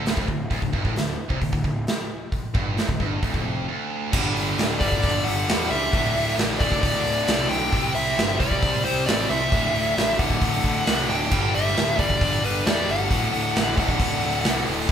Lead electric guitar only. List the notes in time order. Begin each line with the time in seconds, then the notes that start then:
4.80 D5
5.24 F#5
5.70 E5
6.59 D5
6.82 D5
7.49 G5
7.95 E5
8.40 D5
8.85 C5
9.06 D5
9.29 E5
10.19 F#5
11.10 G5
11.55 E5
12.00 D5
12.45 B4
12.67 D5
12.91 F#5
13.80 F#5